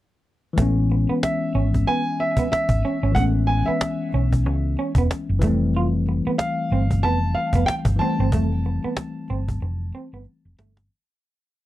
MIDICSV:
0, 0, Header, 1, 8, 480
1, 0, Start_track
1, 0, Tempo, 645161
1, 428, Time_signature, 4, 2, 24, 8
1, 8671, End_track
2, 0, Start_track
2, 0, Title_t, "Grand piano"
2, 0, Program_c, 0, 0
2, 915, Note_on_c, 0, 76, 72
2, 1395, Note_on_c, 0, 80, 89
2, 1406, Note_off_c, 0, 76, 0
2, 1637, Note_on_c, 0, 76, 82
2, 1638, Note_off_c, 0, 80, 0
2, 1862, Note_off_c, 0, 76, 0
2, 1873, Note_on_c, 0, 76, 83
2, 2342, Note_on_c, 0, 78, 90
2, 2365, Note_off_c, 0, 76, 0
2, 2397, Note_off_c, 0, 78, 0
2, 2582, Note_on_c, 0, 80, 78
2, 2721, Note_on_c, 0, 76, 74
2, 2729, Note_off_c, 0, 80, 0
2, 3174, Note_off_c, 0, 76, 0
2, 4749, Note_on_c, 0, 77, 85
2, 5232, Note_on_c, 0, 81, 93
2, 5243, Note_off_c, 0, 77, 0
2, 5466, Note_on_c, 0, 77, 80
2, 5477, Note_off_c, 0, 81, 0
2, 5700, Note_on_c, 0, 79, 97
2, 5714, Note_off_c, 0, 77, 0
2, 5755, Note_off_c, 0, 79, 0
2, 5945, Note_on_c, 0, 81, 84
2, 7837, Note_off_c, 0, 81, 0
2, 8671, End_track
3, 0, Start_track
3, 0, Title_t, "Clean electric guitar"
3, 0, Program_c, 1, 27
3, 438, Note_on_c, 1, 57, 68
3, 530, Note_off_c, 1, 57, 0
3, 814, Note_on_c, 1, 59, 70
3, 880, Note_off_c, 1, 59, 0
3, 1153, Note_on_c, 1, 61, 69
3, 1247, Note_off_c, 1, 61, 0
3, 1401, Note_on_c, 1, 59, 79
3, 1492, Note_off_c, 1, 59, 0
3, 1777, Note_on_c, 1, 59, 68
3, 1842, Note_off_c, 1, 59, 0
3, 2120, Note_on_c, 1, 61, 75
3, 2211, Note_off_c, 1, 61, 0
3, 2257, Note_on_c, 1, 61, 77
3, 2322, Note_off_c, 1, 61, 0
3, 2359, Note_on_c, 1, 57, 79
3, 2450, Note_off_c, 1, 57, 0
3, 2735, Note_on_c, 1, 59, 72
3, 2801, Note_off_c, 1, 59, 0
3, 3081, Note_on_c, 1, 61, 68
3, 3172, Note_off_c, 1, 61, 0
3, 3563, Note_on_c, 1, 61, 68
3, 3653, Note_off_c, 1, 61, 0
3, 3707, Note_on_c, 1, 59, 71
3, 3769, Note_off_c, 1, 59, 0
3, 4046, Note_on_c, 1, 57, 72
3, 4135, Note_off_c, 1, 57, 0
3, 4289, Note_on_c, 1, 65, 70
3, 4377, Note_off_c, 1, 65, 0
3, 4664, Note_on_c, 1, 59, 72
3, 4727, Note_off_c, 1, 59, 0
3, 5004, Note_on_c, 1, 60, 67
3, 5094, Note_off_c, 1, 60, 0
3, 5243, Note_on_c, 1, 59, 78
3, 5333, Note_off_c, 1, 59, 0
3, 5621, Note_on_c, 1, 59, 71
3, 5685, Note_off_c, 1, 59, 0
3, 5964, Note_on_c, 1, 60, 75
3, 6054, Note_off_c, 1, 60, 0
3, 6103, Note_on_c, 1, 60, 81
3, 6166, Note_off_c, 1, 60, 0
3, 6207, Note_on_c, 1, 57, 78
3, 6296, Note_off_c, 1, 57, 0
3, 6580, Note_on_c, 1, 59, 69
3, 6644, Note_off_c, 1, 59, 0
3, 6919, Note_on_c, 1, 60, 62
3, 7010, Note_off_c, 1, 60, 0
3, 7400, Note_on_c, 1, 60, 59
3, 7491, Note_off_c, 1, 60, 0
3, 7542, Note_on_c, 1, 59, 72
3, 7605, Note_off_c, 1, 59, 0
3, 7878, Note_on_c, 1, 57, 70
3, 7970, Note_off_c, 1, 57, 0
3, 8671, End_track
4, 0, Start_track
4, 0, Title_t, "Tine electric piano"
4, 0, Program_c, 2, 4
4, 396, Note_on_c, 2, 52, 65
4, 416, Note_on_c, 2, 56, 57
4, 439, Note_on_c, 2, 59, 65
4, 459, Note_on_c, 2, 61, 78
4, 560, Control_c, 2, 64, 127
4, 2302, Note_off_c, 2, 52, 0
4, 2312, Note_off_c, 2, 56, 0
4, 2320, Note_on_c, 2, 52, 60
4, 2324, Note_off_c, 2, 59, 0
4, 2334, Note_off_c, 2, 61, 0
4, 2342, Note_on_c, 2, 56, 55
4, 2361, Note_on_c, 2, 59, 52
4, 2381, Note_on_c, 2, 61, 65
4, 3984, Note_off_c, 2, 52, 0
4, 3995, Note_off_c, 2, 56, 0
4, 4005, Note_off_c, 2, 59, 0
4, 4012, Note_on_c, 2, 52, 72
4, 4014, Note_off_c, 2, 61, 0
4, 4031, Note_on_c, 2, 55, 71
4, 4036, Control_c, 2, 64, 0
4, 4051, Note_on_c, 2, 57, 67
4, 4074, Note_on_c, 2, 60, 76
4, 4158, Control_c, 2, 64, 127
4, 5910, Note_off_c, 2, 52, 0
4, 5920, Note_off_c, 2, 55, 0
4, 5923, Note_on_c, 2, 52, 59
4, 5930, Note_off_c, 2, 57, 0
4, 5941, Note_off_c, 2, 60, 0
4, 5943, Note_on_c, 2, 55, 54
4, 5963, Note_on_c, 2, 57, 58
4, 5984, Note_on_c, 2, 60, 67
4, 7826, Note_off_c, 2, 52, 0
4, 7836, Note_off_c, 2, 55, 0
4, 7846, Note_off_c, 2, 57, 0
4, 7856, Note_off_c, 2, 60, 0
4, 8118, Control_c, 2, 64, 0
4, 8671, End_track
5, 0, Start_track
5, 0, Title_t, "Fingered electric bass"
5, 0, Program_c, 3, 33
5, 432, Note_on_c, 3, 33, 83
5, 780, Note_off_c, 3, 33, 0
5, 1152, Note_on_c, 3, 32, 76
5, 1370, Note_off_c, 3, 32, 0
5, 2004, Note_on_c, 3, 32, 74
5, 2098, Note_off_c, 3, 32, 0
5, 2254, Note_on_c, 3, 32, 80
5, 2343, Note_off_c, 3, 32, 0
5, 2355, Note_on_c, 3, 33, 89
5, 2701, Note_off_c, 3, 33, 0
5, 3078, Note_on_c, 3, 35, 71
5, 3318, Note_off_c, 3, 35, 0
5, 3318, Note_on_c, 3, 37, 94
5, 3534, Note_off_c, 3, 37, 0
5, 3688, Note_on_c, 3, 28, 82
5, 3780, Note_off_c, 3, 28, 0
5, 3939, Note_on_c, 3, 30, 74
5, 4035, Note_off_c, 3, 30, 0
5, 4035, Note_on_c, 3, 29, 85
5, 4621, Note_off_c, 3, 29, 0
5, 4997, Note_on_c, 3, 31, 79
5, 5239, Note_off_c, 3, 31, 0
5, 5239, Note_on_c, 3, 29, 92
5, 5454, Note_off_c, 3, 29, 0
5, 5603, Note_on_c, 3, 29, 82
5, 5697, Note_off_c, 3, 29, 0
5, 5844, Note_on_c, 3, 31, 72
5, 5938, Note_off_c, 3, 31, 0
5, 6096, Note_on_c, 3, 31, 78
5, 6195, Note_off_c, 3, 31, 0
5, 6195, Note_on_c, 3, 29, 96
5, 6542, Note_off_c, 3, 29, 0
5, 6921, Note_on_c, 3, 31, 78
5, 7135, Note_off_c, 3, 31, 0
5, 7157, Note_on_c, 3, 29, 87
5, 7373, Note_off_c, 3, 29, 0
5, 7535, Note_on_c, 3, 31, 79
5, 7624, Note_off_c, 3, 31, 0
5, 7776, Note_on_c, 3, 29, 76
5, 7864, Note_off_c, 3, 29, 0
5, 7876, Note_on_c, 3, 31, 81
5, 8093, Note_off_c, 3, 31, 0
5, 8671, End_track
6, 0, Start_track
6, 0, Title_t, "Cajon"
6, 429, Note_on_c, 9, 36, 106
6, 504, Note_off_c, 9, 36, 0
6, 676, Note_on_c, 9, 38, 34
6, 750, Note_off_c, 9, 38, 0
6, 916, Note_on_c, 9, 38, 98
6, 990, Note_off_c, 9, 38, 0
6, 1148, Note_on_c, 9, 38, 34
6, 1222, Note_off_c, 9, 38, 0
6, 1298, Note_on_c, 9, 36, 73
6, 1299, Note_on_c, 9, 38, 30
6, 1372, Note_off_c, 9, 36, 0
6, 1373, Note_off_c, 9, 38, 0
6, 1395, Note_on_c, 9, 38, 33
6, 1469, Note_off_c, 9, 38, 0
6, 1632, Note_on_c, 9, 38, 31
6, 1707, Note_off_c, 9, 38, 0
6, 1761, Note_on_c, 9, 36, 89
6, 1835, Note_off_c, 9, 36, 0
6, 1881, Note_on_c, 9, 38, 97
6, 1956, Note_off_c, 9, 38, 0
6, 2000, Note_on_c, 9, 36, 90
6, 2074, Note_off_c, 9, 36, 0
6, 2124, Note_on_c, 9, 38, 36
6, 2199, Note_off_c, 9, 38, 0
6, 2352, Note_on_c, 9, 36, 98
6, 2426, Note_off_c, 9, 36, 0
6, 2595, Note_on_c, 9, 38, 35
6, 2669, Note_off_c, 9, 38, 0
6, 2835, Note_on_c, 9, 38, 114
6, 2909, Note_off_c, 9, 38, 0
6, 3066, Note_on_c, 9, 38, 35
6, 3140, Note_off_c, 9, 38, 0
6, 3218, Note_on_c, 9, 36, 82
6, 3218, Note_on_c, 9, 38, 32
6, 3292, Note_off_c, 9, 38, 0
6, 3293, Note_off_c, 9, 36, 0
6, 3311, Note_on_c, 9, 38, 36
6, 3385, Note_off_c, 9, 38, 0
6, 3550, Note_on_c, 9, 38, 32
6, 3625, Note_off_c, 9, 38, 0
6, 3682, Note_on_c, 9, 36, 91
6, 3756, Note_off_c, 9, 36, 0
6, 3800, Note_on_c, 9, 38, 92
6, 3875, Note_off_c, 9, 38, 0
6, 4030, Note_on_c, 9, 36, 92
6, 4104, Note_off_c, 9, 36, 0
6, 4267, Note_on_c, 9, 38, 45
6, 4341, Note_off_c, 9, 38, 0
6, 4514, Note_on_c, 9, 38, 34
6, 4588, Note_off_c, 9, 38, 0
6, 4754, Note_on_c, 9, 38, 107
6, 4829, Note_off_c, 9, 38, 0
6, 4986, Note_on_c, 9, 38, 35
6, 5060, Note_off_c, 9, 38, 0
6, 5135, Note_on_c, 9, 38, 29
6, 5138, Note_on_c, 9, 36, 75
6, 5209, Note_off_c, 9, 38, 0
6, 5213, Note_off_c, 9, 36, 0
6, 5471, Note_on_c, 9, 38, 29
6, 5546, Note_off_c, 9, 38, 0
6, 5601, Note_on_c, 9, 36, 87
6, 5675, Note_off_c, 9, 36, 0
6, 5716, Note_on_c, 9, 38, 96
6, 5791, Note_off_c, 9, 38, 0
6, 5840, Note_on_c, 9, 36, 95
6, 5915, Note_off_c, 9, 36, 0
6, 6191, Note_on_c, 9, 36, 100
6, 6266, Note_off_c, 9, 36, 0
6, 6342, Note_on_c, 9, 38, 30
6, 6416, Note_off_c, 9, 38, 0
6, 6436, Note_on_c, 9, 38, 33
6, 6510, Note_off_c, 9, 38, 0
6, 6575, Note_on_c, 9, 38, 29
6, 6650, Note_off_c, 9, 38, 0
6, 6671, Note_on_c, 9, 38, 106
6, 6745, Note_off_c, 9, 38, 0
6, 6904, Note_on_c, 9, 38, 33
6, 6978, Note_off_c, 9, 38, 0
6, 7052, Note_on_c, 9, 38, 33
6, 7056, Note_on_c, 9, 36, 76
6, 7126, Note_off_c, 9, 38, 0
6, 7131, Note_off_c, 9, 36, 0
6, 7146, Note_on_c, 9, 38, 33
6, 7220, Note_off_c, 9, 38, 0
6, 7385, Note_on_c, 9, 38, 31
6, 7459, Note_off_c, 9, 38, 0
6, 7623, Note_on_c, 9, 38, 41
6, 7697, Note_off_c, 9, 38, 0
6, 7876, Note_on_c, 9, 38, 87
6, 7950, Note_off_c, 9, 38, 0
6, 8013, Note_on_c, 9, 38, 90
6, 8087, Note_off_c, 9, 38, 0
6, 8671, End_track
7, 0, Start_track
7, 0, Title_t, "Muted clean electric guitar strokes"
7, 682, Note_on_c, 9, 29, 36
7, 756, Note_off_c, 9, 29, 0
7, 1638, Note_on_c, 9, 29, 36
7, 1712, Note_off_c, 9, 29, 0
7, 1877, Note_on_c, 9, 29, 38
7, 1952, Note_off_c, 9, 29, 0
7, 2601, Note_on_c, 9, 29, 38
7, 2675, Note_off_c, 9, 29, 0
7, 3322, Note_on_c, 9, 29, 43
7, 3396, Note_off_c, 9, 29, 0
7, 4529, Note_on_c, 9, 29, 37
7, 4603, Note_off_c, 9, 29, 0
7, 5484, Note_on_c, 9, 29, 34
7, 5559, Note_off_c, 9, 29, 0
7, 5731, Note_on_c, 9, 29, 42
7, 5805, Note_off_c, 9, 29, 0
7, 6443, Note_on_c, 9, 29, 38
7, 6518, Note_off_c, 9, 29, 0
7, 7160, Note_on_c, 9, 29, 44
7, 7234, Note_off_c, 9, 29, 0
7, 8671, End_track
8, 0, Start_track
8, 0, Title_t, "Muted fingered electric bass strokes"
8, 1875, Note_on_c, 9, 29, 40
8, 1950, Note_off_c, 9, 29, 0
8, 2739, Note_on_c, 9, 29, 41
8, 2813, Note_off_c, 9, 29, 0
8, 4660, Note_on_c, 9, 29, 40
8, 4735, Note_off_c, 9, 29, 0
8, 6580, Note_on_c, 9, 29, 41
8, 6655, Note_off_c, 9, 29, 0
8, 8671, End_track
0, 0, End_of_file